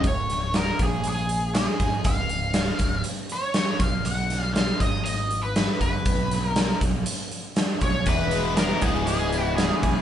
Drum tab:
HH |xxxxxxxx|xxxxxxxx|xxxxxxxx|xxxxxxxx|
SD |-oo---o-|--o---o-|-oo---o-|-oo---o-|
BD |o--o---o|o--o---o|---o---o|o--o---o|

HH |xxxxxxxx|
SD |--o---o-|
BD |o--o---o|